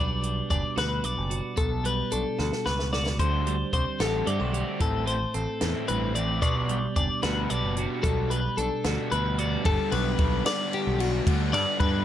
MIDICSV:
0, 0, Header, 1, 6, 480
1, 0, Start_track
1, 0, Key_signature, 1, "major"
1, 0, Tempo, 538117
1, 1408, Time_signature, 6, 3, 24, 8
1, 10746, End_track
2, 0, Start_track
2, 0, Title_t, "Clean electric guitar"
2, 0, Program_c, 0, 27
2, 0, Note_on_c, 0, 74, 83
2, 440, Note_off_c, 0, 74, 0
2, 451, Note_on_c, 0, 74, 65
2, 690, Note_off_c, 0, 74, 0
2, 699, Note_on_c, 0, 71, 81
2, 934, Note_off_c, 0, 71, 0
2, 934, Note_on_c, 0, 74, 68
2, 1406, Note_on_c, 0, 69, 79
2, 1411, Note_off_c, 0, 74, 0
2, 1647, Note_off_c, 0, 69, 0
2, 1657, Note_on_c, 0, 71, 75
2, 1889, Note_on_c, 0, 69, 68
2, 1892, Note_off_c, 0, 71, 0
2, 2368, Note_off_c, 0, 69, 0
2, 2370, Note_on_c, 0, 71, 64
2, 2607, Note_off_c, 0, 71, 0
2, 2611, Note_on_c, 0, 74, 62
2, 2848, Note_off_c, 0, 74, 0
2, 2851, Note_on_c, 0, 72, 77
2, 3320, Note_off_c, 0, 72, 0
2, 3331, Note_on_c, 0, 72, 67
2, 3569, Note_off_c, 0, 72, 0
2, 3569, Note_on_c, 0, 69, 75
2, 3808, Note_off_c, 0, 69, 0
2, 3809, Note_on_c, 0, 74, 69
2, 4288, Note_off_c, 0, 74, 0
2, 4295, Note_on_c, 0, 69, 82
2, 4522, Note_off_c, 0, 69, 0
2, 4526, Note_on_c, 0, 72, 73
2, 4769, Note_off_c, 0, 72, 0
2, 4769, Note_on_c, 0, 69, 69
2, 5243, Note_off_c, 0, 69, 0
2, 5247, Note_on_c, 0, 71, 66
2, 5483, Note_off_c, 0, 71, 0
2, 5487, Note_on_c, 0, 74, 63
2, 5716, Note_off_c, 0, 74, 0
2, 5727, Note_on_c, 0, 74, 80
2, 6200, Note_off_c, 0, 74, 0
2, 6211, Note_on_c, 0, 74, 67
2, 6445, Note_off_c, 0, 74, 0
2, 6449, Note_on_c, 0, 71, 78
2, 6690, Note_off_c, 0, 71, 0
2, 6690, Note_on_c, 0, 74, 67
2, 7164, Note_on_c, 0, 69, 80
2, 7169, Note_off_c, 0, 74, 0
2, 7406, Note_off_c, 0, 69, 0
2, 7406, Note_on_c, 0, 71, 71
2, 7648, Note_off_c, 0, 71, 0
2, 7648, Note_on_c, 0, 69, 66
2, 8128, Note_off_c, 0, 69, 0
2, 8132, Note_on_c, 0, 71, 66
2, 8371, Note_off_c, 0, 71, 0
2, 8371, Note_on_c, 0, 74, 61
2, 8610, Note_off_c, 0, 74, 0
2, 8615, Note_on_c, 0, 69, 98
2, 8845, Note_on_c, 0, 71, 84
2, 8852, Note_off_c, 0, 69, 0
2, 9327, Note_off_c, 0, 71, 0
2, 9333, Note_on_c, 0, 74, 88
2, 9571, Note_off_c, 0, 74, 0
2, 9579, Note_on_c, 0, 67, 76
2, 9819, Note_off_c, 0, 67, 0
2, 9819, Note_on_c, 0, 66, 75
2, 10287, Note_on_c, 0, 74, 84
2, 10293, Note_off_c, 0, 66, 0
2, 10520, Note_off_c, 0, 74, 0
2, 10524, Note_on_c, 0, 71, 77
2, 10746, Note_off_c, 0, 71, 0
2, 10746, End_track
3, 0, Start_track
3, 0, Title_t, "Clean electric guitar"
3, 0, Program_c, 1, 27
3, 0, Note_on_c, 1, 47, 67
3, 0, Note_on_c, 1, 55, 58
3, 0, Note_on_c, 1, 62, 59
3, 0, Note_on_c, 1, 66, 53
3, 0, Note_on_c, 1, 71, 63
3, 197, Note_off_c, 1, 55, 0
3, 200, Note_on_c, 1, 55, 59
3, 448, Note_off_c, 1, 62, 0
3, 452, Note_on_c, 1, 62, 56
3, 675, Note_off_c, 1, 66, 0
3, 679, Note_on_c, 1, 66, 55
3, 915, Note_off_c, 1, 71, 0
3, 925, Note_on_c, 1, 71, 56
3, 1151, Note_off_c, 1, 66, 0
3, 1162, Note_on_c, 1, 66, 56
3, 1373, Note_off_c, 1, 47, 0
3, 1376, Note_off_c, 1, 66, 0
3, 1378, Note_off_c, 1, 71, 0
3, 1394, Note_on_c, 1, 47, 66
3, 1637, Note_off_c, 1, 55, 0
3, 1640, Note_on_c, 1, 55, 56
3, 1883, Note_off_c, 1, 62, 0
3, 1887, Note_on_c, 1, 62, 53
3, 2129, Note_on_c, 1, 66, 53
3, 2374, Note_on_c, 1, 71, 52
3, 2606, Note_off_c, 1, 66, 0
3, 2617, Note_on_c, 1, 66, 51
3, 2811, Note_off_c, 1, 47, 0
3, 2818, Note_off_c, 1, 62, 0
3, 2821, Note_off_c, 1, 71, 0
3, 2823, Note_off_c, 1, 66, 0
3, 2853, Note_on_c, 1, 50, 64
3, 3090, Note_off_c, 1, 55, 0
3, 3094, Note_on_c, 1, 55, 61
3, 3332, Note_on_c, 1, 60, 57
3, 3573, Note_on_c, 1, 67, 58
3, 3804, Note_off_c, 1, 67, 0
3, 3804, Note_on_c, 1, 67, 53
3, 3923, Note_off_c, 1, 67, 0
3, 3923, Note_on_c, 1, 69, 43
3, 4041, Note_on_c, 1, 67, 54
3, 4279, Note_on_c, 1, 45, 65
3, 4285, Note_off_c, 1, 69, 0
3, 4290, Note_off_c, 1, 50, 0
3, 4305, Note_off_c, 1, 67, 0
3, 4508, Note_off_c, 1, 55, 0
3, 4512, Note_on_c, 1, 57, 59
3, 4755, Note_off_c, 1, 60, 0
3, 4766, Note_on_c, 1, 60, 55
3, 5243, Note_off_c, 1, 45, 0
3, 5252, Note_on_c, 1, 43, 62
3, 5481, Note_off_c, 1, 43, 0
3, 5484, Note_on_c, 1, 45, 61
3, 5691, Note_off_c, 1, 57, 0
3, 5724, Note_off_c, 1, 45, 0
3, 5727, Note_off_c, 1, 60, 0
3, 5727, Note_on_c, 1, 47, 72
3, 5966, Note_on_c, 1, 55, 59
3, 6207, Note_on_c, 1, 62, 57
3, 6452, Note_on_c, 1, 66, 54
3, 6697, Note_on_c, 1, 71, 56
3, 6935, Note_off_c, 1, 66, 0
3, 6939, Note_on_c, 1, 66, 54
3, 7140, Note_off_c, 1, 47, 0
3, 7171, Note_on_c, 1, 47, 69
3, 7400, Note_off_c, 1, 55, 0
3, 7411, Note_on_c, 1, 55, 58
3, 7437, Note_off_c, 1, 66, 0
3, 7656, Note_off_c, 1, 62, 0
3, 7660, Note_on_c, 1, 62, 54
3, 7901, Note_on_c, 1, 66, 52
3, 8137, Note_off_c, 1, 71, 0
3, 8141, Note_on_c, 1, 71, 52
3, 8366, Note_off_c, 1, 66, 0
3, 8376, Note_on_c, 1, 66, 53
3, 8581, Note_off_c, 1, 47, 0
3, 8584, Note_off_c, 1, 66, 0
3, 8585, Note_off_c, 1, 62, 0
3, 8586, Note_off_c, 1, 71, 0
3, 10049, Note_off_c, 1, 55, 0
3, 10746, End_track
4, 0, Start_track
4, 0, Title_t, "Overdriven electric guitar"
4, 0, Program_c, 2, 29
4, 2850, Note_on_c, 2, 50, 68
4, 2853, Note_on_c, 2, 57, 67
4, 2859, Note_on_c, 2, 60, 73
4, 2863, Note_on_c, 2, 66, 80
4, 3160, Note_off_c, 2, 50, 0
4, 3162, Note_off_c, 2, 57, 0
4, 3165, Note_off_c, 2, 60, 0
4, 3167, Note_off_c, 2, 66, 0
4, 3570, Note_on_c, 2, 66, 89
4, 3576, Note_on_c, 2, 60, 71
4, 3579, Note_on_c, 2, 57, 76
4, 3580, Note_on_c, 2, 50, 66
4, 3800, Note_off_c, 2, 50, 0
4, 3805, Note_off_c, 2, 57, 0
4, 3805, Note_off_c, 2, 60, 0
4, 3805, Note_off_c, 2, 66, 0
4, 3811, Note_on_c, 2, 50, 62
4, 3815, Note_on_c, 2, 57, 66
4, 3816, Note_on_c, 2, 60, 66
4, 3816, Note_on_c, 2, 66, 68
4, 4037, Note_off_c, 2, 66, 0
4, 4040, Note_off_c, 2, 60, 0
4, 4043, Note_off_c, 2, 57, 0
4, 4047, Note_on_c, 2, 66, 72
4, 4049, Note_off_c, 2, 50, 0
4, 4050, Note_on_c, 2, 60, 68
4, 4054, Note_on_c, 2, 57, 61
4, 4059, Note_on_c, 2, 50, 56
4, 4278, Note_off_c, 2, 57, 0
4, 4280, Note_off_c, 2, 50, 0
4, 4280, Note_off_c, 2, 60, 0
4, 4283, Note_on_c, 2, 52, 78
4, 4287, Note_off_c, 2, 66, 0
4, 4289, Note_on_c, 2, 57, 70
4, 4291, Note_on_c, 2, 60, 77
4, 4295, Note_on_c, 2, 64, 81
4, 4597, Note_off_c, 2, 52, 0
4, 4600, Note_off_c, 2, 57, 0
4, 4601, Note_off_c, 2, 60, 0
4, 4603, Note_off_c, 2, 64, 0
4, 5008, Note_on_c, 2, 64, 89
4, 5010, Note_on_c, 2, 60, 78
4, 5017, Note_on_c, 2, 57, 77
4, 5018, Note_on_c, 2, 52, 69
4, 5232, Note_off_c, 2, 52, 0
4, 5237, Note_off_c, 2, 57, 0
4, 5243, Note_off_c, 2, 64, 0
4, 5243, Note_on_c, 2, 52, 62
4, 5245, Note_off_c, 2, 60, 0
4, 5248, Note_on_c, 2, 57, 70
4, 5254, Note_on_c, 2, 64, 68
4, 5255, Note_on_c, 2, 60, 78
4, 5476, Note_off_c, 2, 64, 0
4, 5477, Note_off_c, 2, 60, 0
4, 5484, Note_off_c, 2, 57, 0
4, 5485, Note_off_c, 2, 52, 0
4, 5486, Note_on_c, 2, 64, 67
4, 5488, Note_on_c, 2, 60, 62
4, 5495, Note_on_c, 2, 57, 61
4, 5501, Note_on_c, 2, 52, 56
4, 5722, Note_off_c, 2, 52, 0
4, 5726, Note_off_c, 2, 57, 0
4, 5726, Note_on_c, 2, 47, 78
4, 5727, Note_off_c, 2, 64, 0
4, 5728, Note_off_c, 2, 60, 0
4, 5730, Note_on_c, 2, 55, 79
4, 5731, Note_on_c, 2, 59, 84
4, 5736, Note_on_c, 2, 62, 78
4, 6039, Note_off_c, 2, 47, 0
4, 6041, Note_off_c, 2, 55, 0
4, 6042, Note_off_c, 2, 59, 0
4, 6044, Note_off_c, 2, 62, 0
4, 6443, Note_on_c, 2, 62, 82
4, 6447, Note_on_c, 2, 59, 79
4, 6452, Note_on_c, 2, 55, 75
4, 6455, Note_on_c, 2, 47, 62
4, 6680, Note_off_c, 2, 47, 0
4, 6683, Note_off_c, 2, 55, 0
4, 6685, Note_off_c, 2, 59, 0
4, 6686, Note_off_c, 2, 62, 0
4, 6691, Note_on_c, 2, 47, 65
4, 6694, Note_on_c, 2, 55, 65
4, 6696, Note_on_c, 2, 59, 72
4, 6702, Note_on_c, 2, 62, 72
4, 6917, Note_off_c, 2, 62, 0
4, 6923, Note_off_c, 2, 59, 0
4, 6924, Note_off_c, 2, 55, 0
4, 6927, Note_on_c, 2, 62, 75
4, 6928, Note_off_c, 2, 47, 0
4, 6933, Note_on_c, 2, 59, 64
4, 6935, Note_on_c, 2, 55, 60
4, 6938, Note_on_c, 2, 47, 58
4, 7157, Note_off_c, 2, 47, 0
4, 7163, Note_off_c, 2, 55, 0
4, 7164, Note_off_c, 2, 59, 0
4, 7167, Note_on_c, 2, 47, 74
4, 7168, Note_off_c, 2, 62, 0
4, 7174, Note_on_c, 2, 55, 70
4, 7175, Note_on_c, 2, 59, 79
4, 7180, Note_on_c, 2, 62, 83
4, 7480, Note_off_c, 2, 47, 0
4, 7483, Note_off_c, 2, 55, 0
4, 7484, Note_off_c, 2, 59, 0
4, 7487, Note_off_c, 2, 62, 0
4, 7888, Note_on_c, 2, 62, 83
4, 7895, Note_on_c, 2, 59, 80
4, 7898, Note_on_c, 2, 55, 74
4, 7900, Note_on_c, 2, 47, 73
4, 8120, Note_off_c, 2, 47, 0
4, 8122, Note_off_c, 2, 55, 0
4, 8127, Note_off_c, 2, 59, 0
4, 8129, Note_off_c, 2, 62, 0
4, 8131, Note_on_c, 2, 47, 62
4, 8133, Note_on_c, 2, 55, 62
4, 8138, Note_on_c, 2, 59, 70
4, 8144, Note_on_c, 2, 62, 69
4, 8357, Note_off_c, 2, 62, 0
4, 8360, Note_off_c, 2, 59, 0
4, 8363, Note_off_c, 2, 55, 0
4, 8366, Note_off_c, 2, 47, 0
4, 8368, Note_on_c, 2, 62, 69
4, 8370, Note_on_c, 2, 59, 65
4, 8374, Note_on_c, 2, 55, 60
4, 8376, Note_on_c, 2, 47, 51
4, 8599, Note_on_c, 2, 43, 84
4, 8602, Note_off_c, 2, 55, 0
4, 8603, Note_off_c, 2, 47, 0
4, 8606, Note_on_c, 2, 50, 96
4, 8608, Note_off_c, 2, 62, 0
4, 8610, Note_off_c, 2, 59, 0
4, 8613, Note_on_c, 2, 55, 92
4, 8620, Note_on_c, 2, 59, 98
4, 8622, Note_on_c, 2, 62, 96
4, 8836, Note_off_c, 2, 62, 0
4, 8840, Note_on_c, 2, 62, 76
4, 8850, Note_off_c, 2, 59, 0
4, 8854, Note_on_c, 2, 59, 74
4, 8862, Note_off_c, 2, 55, 0
4, 8866, Note_on_c, 2, 55, 63
4, 9062, Note_off_c, 2, 50, 0
4, 9073, Note_on_c, 2, 50, 82
4, 9077, Note_off_c, 2, 55, 0
4, 9081, Note_on_c, 2, 55, 83
4, 9092, Note_off_c, 2, 59, 0
4, 9096, Note_on_c, 2, 59, 80
4, 9098, Note_off_c, 2, 62, 0
4, 9102, Note_on_c, 2, 62, 82
4, 9314, Note_off_c, 2, 62, 0
4, 9317, Note_on_c, 2, 62, 97
4, 9320, Note_off_c, 2, 59, 0
4, 9323, Note_off_c, 2, 55, 0
4, 9324, Note_on_c, 2, 59, 89
4, 9325, Note_off_c, 2, 50, 0
4, 9327, Note_on_c, 2, 55, 86
4, 9336, Note_on_c, 2, 50, 82
4, 9338, Note_off_c, 2, 43, 0
4, 9342, Note_on_c, 2, 43, 68
4, 9791, Note_off_c, 2, 62, 0
4, 9795, Note_on_c, 2, 62, 73
4, 9802, Note_off_c, 2, 59, 0
4, 9806, Note_on_c, 2, 59, 63
4, 9812, Note_off_c, 2, 55, 0
4, 9815, Note_on_c, 2, 55, 62
4, 10031, Note_off_c, 2, 43, 0
4, 10034, Note_off_c, 2, 50, 0
4, 10035, Note_on_c, 2, 43, 94
4, 10044, Note_on_c, 2, 50, 87
4, 10046, Note_off_c, 2, 55, 0
4, 10049, Note_on_c, 2, 55, 96
4, 10051, Note_off_c, 2, 59, 0
4, 10054, Note_on_c, 2, 59, 89
4, 10055, Note_off_c, 2, 62, 0
4, 10059, Note_on_c, 2, 62, 96
4, 10278, Note_off_c, 2, 62, 0
4, 10282, Note_on_c, 2, 62, 78
4, 10290, Note_off_c, 2, 59, 0
4, 10293, Note_on_c, 2, 59, 70
4, 10305, Note_off_c, 2, 55, 0
4, 10308, Note_on_c, 2, 55, 65
4, 10506, Note_off_c, 2, 50, 0
4, 10516, Note_on_c, 2, 50, 83
4, 10525, Note_off_c, 2, 55, 0
4, 10529, Note_on_c, 2, 55, 81
4, 10534, Note_off_c, 2, 59, 0
4, 10537, Note_on_c, 2, 59, 83
4, 10541, Note_off_c, 2, 62, 0
4, 10544, Note_on_c, 2, 62, 86
4, 10746, Note_off_c, 2, 43, 0
4, 10746, Note_off_c, 2, 50, 0
4, 10746, Note_off_c, 2, 55, 0
4, 10746, Note_off_c, 2, 59, 0
4, 10746, Note_off_c, 2, 62, 0
4, 10746, End_track
5, 0, Start_track
5, 0, Title_t, "Picked electric bass"
5, 0, Program_c, 3, 34
5, 0, Note_on_c, 3, 35, 93
5, 358, Note_off_c, 3, 35, 0
5, 451, Note_on_c, 3, 30, 91
5, 547, Note_off_c, 3, 30, 0
5, 690, Note_on_c, 3, 38, 100
5, 884, Note_off_c, 3, 38, 0
5, 925, Note_on_c, 3, 35, 78
5, 1024, Note_off_c, 3, 35, 0
5, 1050, Note_on_c, 3, 30, 85
5, 1243, Note_off_c, 3, 30, 0
5, 1407, Note_on_c, 3, 35, 92
5, 1795, Note_off_c, 3, 35, 0
5, 1898, Note_on_c, 3, 35, 76
5, 1991, Note_off_c, 3, 35, 0
5, 2136, Note_on_c, 3, 38, 86
5, 2229, Note_off_c, 3, 38, 0
5, 2377, Note_on_c, 3, 37, 76
5, 2848, Note_off_c, 3, 37, 0
5, 2848, Note_on_c, 3, 38, 92
5, 3235, Note_off_c, 3, 38, 0
5, 3328, Note_on_c, 3, 36, 87
5, 3425, Note_off_c, 3, 36, 0
5, 3568, Note_on_c, 3, 33, 90
5, 3762, Note_off_c, 3, 33, 0
5, 3810, Note_on_c, 3, 43, 75
5, 3905, Note_off_c, 3, 43, 0
5, 3932, Note_on_c, 3, 35, 88
5, 4124, Note_off_c, 3, 35, 0
5, 4288, Note_on_c, 3, 33, 88
5, 4676, Note_off_c, 3, 33, 0
5, 4772, Note_on_c, 3, 33, 77
5, 4867, Note_off_c, 3, 33, 0
5, 5014, Note_on_c, 3, 40, 84
5, 5108, Note_off_c, 3, 40, 0
5, 5258, Note_on_c, 3, 33, 80
5, 5729, Note_off_c, 3, 33, 0
5, 5729, Note_on_c, 3, 35, 87
5, 6117, Note_off_c, 3, 35, 0
5, 6211, Note_on_c, 3, 30, 93
5, 6307, Note_off_c, 3, 30, 0
5, 6457, Note_on_c, 3, 38, 99
5, 6647, Note_off_c, 3, 38, 0
5, 6699, Note_on_c, 3, 35, 76
5, 6792, Note_off_c, 3, 35, 0
5, 6817, Note_on_c, 3, 30, 92
5, 7008, Note_off_c, 3, 30, 0
5, 7170, Note_on_c, 3, 35, 88
5, 7557, Note_off_c, 3, 35, 0
5, 7652, Note_on_c, 3, 35, 75
5, 7748, Note_off_c, 3, 35, 0
5, 7895, Note_on_c, 3, 38, 82
5, 7989, Note_off_c, 3, 38, 0
5, 8137, Note_on_c, 3, 38, 79
5, 8521, Note_off_c, 3, 38, 0
5, 8613, Note_on_c, 3, 31, 101
5, 8708, Note_off_c, 3, 31, 0
5, 8852, Note_on_c, 3, 35, 107
5, 9045, Note_off_c, 3, 35, 0
5, 9091, Note_on_c, 3, 35, 90
5, 9284, Note_off_c, 3, 35, 0
5, 9697, Note_on_c, 3, 35, 91
5, 9985, Note_off_c, 3, 35, 0
5, 10051, Note_on_c, 3, 38, 104
5, 10291, Note_off_c, 3, 38, 0
5, 10291, Note_on_c, 3, 43, 90
5, 10387, Note_off_c, 3, 43, 0
5, 10527, Note_on_c, 3, 43, 90
5, 10721, Note_off_c, 3, 43, 0
5, 10746, End_track
6, 0, Start_track
6, 0, Title_t, "Drums"
6, 208, Note_on_c, 9, 42, 55
6, 297, Note_off_c, 9, 42, 0
6, 449, Note_on_c, 9, 36, 72
6, 450, Note_on_c, 9, 42, 58
6, 538, Note_off_c, 9, 36, 0
6, 540, Note_off_c, 9, 42, 0
6, 690, Note_on_c, 9, 42, 76
6, 693, Note_on_c, 9, 38, 99
6, 779, Note_off_c, 9, 42, 0
6, 782, Note_off_c, 9, 38, 0
6, 924, Note_on_c, 9, 42, 59
6, 1013, Note_off_c, 9, 42, 0
6, 1166, Note_on_c, 9, 42, 61
6, 1256, Note_off_c, 9, 42, 0
6, 1399, Note_on_c, 9, 42, 80
6, 1407, Note_on_c, 9, 36, 107
6, 1489, Note_off_c, 9, 42, 0
6, 1496, Note_off_c, 9, 36, 0
6, 1649, Note_on_c, 9, 42, 59
6, 1738, Note_off_c, 9, 42, 0
6, 1887, Note_on_c, 9, 42, 59
6, 1976, Note_off_c, 9, 42, 0
6, 2127, Note_on_c, 9, 38, 52
6, 2217, Note_off_c, 9, 38, 0
6, 2251, Note_on_c, 9, 38, 49
6, 2341, Note_off_c, 9, 38, 0
6, 2370, Note_on_c, 9, 38, 69
6, 2459, Note_off_c, 9, 38, 0
6, 2491, Note_on_c, 9, 38, 64
6, 2580, Note_off_c, 9, 38, 0
6, 2613, Note_on_c, 9, 38, 80
6, 2702, Note_off_c, 9, 38, 0
6, 2733, Note_on_c, 9, 38, 78
6, 2822, Note_off_c, 9, 38, 0
6, 2849, Note_on_c, 9, 36, 108
6, 2850, Note_on_c, 9, 42, 82
6, 2939, Note_off_c, 9, 36, 0
6, 2939, Note_off_c, 9, 42, 0
6, 3092, Note_on_c, 9, 42, 57
6, 3181, Note_off_c, 9, 42, 0
6, 3327, Note_on_c, 9, 36, 74
6, 3330, Note_on_c, 9, 42, 57
6, 3417, Note_off_c, 9, 36, 0
6, 3420, Note_off_c, 9, 42, 0
6, 3567, Note_on_c, 9, 42, 77
6, 3570, Note_on_c, 9, 38, 102
6, 3656, Note_off_c, 9, 42, 0
6, 3659, Note_off_c, 9, 38, 0
6, 3808, Note_on_c, 9, 42, 58
6, 3898, Note_off_c, 9, 42, 0
6, 4049, Note_on_c, 9, 42, 53
6, 4139, Note_off_c, 9, 42, 0
6, 4284, Note_on_c, 9, 42, 77
6, 4287, Note_on_c, 9, 36, 105
6, 4373, Note_off_c, 9, 42, 0
6, 4376, Note_off_c, 9, 36, 0
6, 4525, Note_on_c, 9, 42, 54
6, 4614, Note_off_c, 9, 42, 0
6, 4764, Note_on_c, 9, 42, 58
6, 4853, Note_off_c, 9, 42, 0
6, 5002, Note_on_c, 9, 42, 76
6, 5004, Note_on_c, 9, 38, 104
6, 5091, Note_off_c, 9, 42, 0
6, 5094, Note_off_c, 9, 38, 0
6, 5246, Note_on_c, 9, 42, 58
6, 5335, Note_off_c, 9, 42, 0
6, 5488, Note_on_c, 9, 42, 59
6, 5578, Note_off_c, 9, 42, 0
6, 5727, Note_on_c, 9, 42, 86
6, 5729, Note_on_c, 9, 36, 105
6, 5816, Note_off_c, 9, 42, 0
6, 5818, Note_off_c, 9, 36, 0
6, 5968, Note_on_c, 9, 42, 61
6, 6057, Note_off_c, 9, 42, 0
6, 6209, Note_on_c, 9, 42, 59
6, 6210, Note_on_c, 9, 36, 71
6, 6298, Note_off_c, 9, 42, 0
6, 6299, Note_off_c, 9, 36, 0
6, 6447, Note_on_c, 9, 42, 78
6, 6450, Note_on_c, 9, 38, 98
6, 6536, Note_off_c, 9, 42, 0
6, 6539, Note_off_c, 9, 38, 0
6, 6689, Note_on_c, 9, 42, 61
6, 6778, Note_off_c, 9, 42, 0
6, 6927, Note_on_c, 9, 42, 57
6, 7016, Note_off_c, 9, 42, 0
6, 7170, Note_on_c, 9, 36, 104
6, 7171, Note_on_c, 9, 42, 78
6, 7259, Note_off_c, 9, 36, 0
6, 7260, Note_off_c, 9, 42, 0
6, 7411, Note_on_c, 9, 42, 57
6, 7500, Note_off_c, 9, 42, 0
6, 7650, Note_on_c, 9, 42, 59
6, 7739, Note_off_c, 9, 42, 0
6, 7888, Note_on_c, 9, 42, 72
6, 7891, Note_on_c, 9, 38, 103
6, 7977, Note_off_c, 9, 42, 0
6, 7980, Note_off_c, 9, 38, 0
6, 8132, Note_on_c, 9, 42, 59
6, 8221, Note_off_c, 9, 42, 0
6, 8371, Note_on_c, 9, 42, 53
6, 8460, Note_off_c, 9, 42, 0
6, 8611, Note_on_c, 9, 36, 126
6, 8611, Note_on_c, 9, 51, 104
6, 8700, Note_off_c, 9, 36, 0
6, 8700, Note_off_c, 9, 51, 0
6, 8849, Note_on_c, 9, 51, 75
6, 8938, Note_off_c, 9, 51, 0
6, 9085, Note_on_c, 9, 51, 82
6, 9088, Note_on_c, 9, 36, 81
6, 9174, Note_off_c, 9, 51, 0
6, 9177, Note_off_c, 9, 36, 0
6, 9328, Note_on_c, 9, 51, 109
6, 9330, Note_on_c, 9, 38, 112
6, 9417, Note_off_c, 9, 51, 0
6, 9420, Note_off_c, 9, 38, 0
6, 9571, Note_on_c, 9, 51, 88
6, 9660, Note_off_c, 9, 51, 0
6, 9813, Note_on_c, 9, 51, 85
6, 9902, Note_off_c, 9, 51, 0
6, 10051, Note_on_c, 9, 36, 124
6, 10055, Note_on_c, 9, 51, 113
6, 10140, Note_off_c, 9, 36, 0
6, 10144, Note_off_c, 9, 51, 0
6, 10293, Note_on_c, 9, 51, 81
6, 10382, Note_off_c, 9, 51, 0
6, 10528, Note_on_c, 9, 36, 83
6, 10529, Note_on_c, 9, 51, 81
6, 10617, Note_off_c, 9, 36, 0
6, 10618, Note_off_c, 9, 51, 0
6, 10746, End_track
0, 0, End_of_file